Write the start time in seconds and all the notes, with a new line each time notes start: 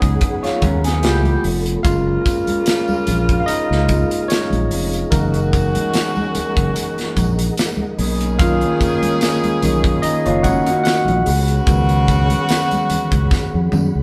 Already playing: C#3 F#3 B3 D#4 G#4 B4 C#5 F#5 B5
0.02 C#2, kick, closed hi-hat
0.21 kick, closed hi-hat
0.43 F4 C#5, snare, closed hi-hat
0.62 D#2 C#4 A#4, kick, closed hi-hat, muted conga, high conga
0.84 B3 G#4, snare, closed hi-hat
1.02 C#2 G3 A3 B3 E4 F4 G4 A4, snare, closed hi-hat
1.23 closed hi-hat, high conga, low conga
1.44 F1, open hi-hat, muted conga
1.66 closed hi-hat
1.83 F#1 C#3 G#3 A#3 F4 G#4 F5 A#5, kick, closed hi-hat, tambourine
2.25 kick, closed hi-hat, tambourine
2.47 closed hi-hat, high conga
2.66 snare, closed hi-hat, tambourine
2.88 tambourine, high conga
3.07 A#1, closed hi-hat, tambourine, high conga, low conga
3.29 kick, closed hi-hat
3.40 F5
3.46 D#4 D#5, muted fingered electric bass stroke, closed hi-hat, tambourine
3.71 C#2, snare
3.88 G#3 A#3 F4, kick, closed hi-hat, tambourine, high conga
4.11 closed hi-hat, tambourine
4.28 C#4 C#5, snare, closed hi-hat, tambourine
4.50 A#1, closed hi-hat, high conga, low conga
4.71 F1, open hi-hat, tambourine, muted conga
4.93 closed hi-hat, tambourine
5.11 F#1 D#3 E3 G#3 A#3 C#4 D#4 F#4 A#4 D#5 F#5, kick, closed hi-hat, tambourine
5.34 closed hi-hat, tambourine
5.53 kick, closed hi-hat, tambourine, muted conga
5.75 closed hi-hat, high conga
5.94 snare, closed hi-hat, tambourine, muted conga
6.15 tambourine, high conga
6.35 muted fingered electric bass stroke, closed hi-hat, tambourine, muted conga, high conga, low conga
6.57 F#1, kick, closed hi-hat
6.75 closed hi-hat, tambourine, muted conga
6.98 snare, closed hi-hat
7.16 A#1, kick, closed hi-hat, tambourine, high conga
7.39 closed hi-hat, tambourine
7.57 snare, closed hi-hat, tambourine
7.77 high conga, low conga
7.98 B1 D#3 A#3 C#4 G#4 C#5 B5, open hi-hat, tambourine
8.21 closed hi-hat, tambourine
8.39 D#3 A#3 C#4 F4 F5, kick, closed hi-hat, tambourine
8.61 closed hi-hat
8.81 kick, closed hi-hat, tambourine
9.02 closed hi-hat, high conga
9.21 snare, closed hi-hat, tambourine, muted conga
9.43 closed hi-hat, tambourine, high conga
9.62 B1 D#3 A#3 C#4, closed hi-hat, tambourine, muted conga, high conga, low conga
9.84 kick, closed hi-hat
10.02 D#4 D#5, muted fingered electric bass stroke, closed hi-hat, tambourine, muted conga
10.26 F#1 F4 C#5, closed hi-hat
10.43 C#4 F#4 A#4 F#5, kick, closed hi-hat, tambourine, muted conga, high conga
10.66 A#3 F#4, closed hi-hat, tambourine
10.84 F#4 F#5, snare, closed hi-hat, tambourine
11.05 A#1, closed hi-hat, high conga, low conga
11.25 C#2 C#3 B3 F#4 G#4 F#5, open hi-hat, tambourine
11.48 closed hi-hat, tambourine
11.67 C#2 D#3 F#3 B3, kick, closed hi-hat, tambourine, muted conga
11.89 closed hi-hat, tambourine
12.08 kick, closed hi-hat, tambourine
12.30 closed hi-hat, high conga
12.49 snare, closed hi-hat, tambourine, muted conga
12.71 closed hi-hat, tambourine, high conga
12.90 muted fingered electric bass stroke, closed hi-hat, tambourine, muted conga, high conga, low conga
13.12 C#2, kick, closed hi-hat
13.31 kick, snare, tambourine
13.54 F2
13.72 F#2, high tom, tambourine, high conga
13.95 C#2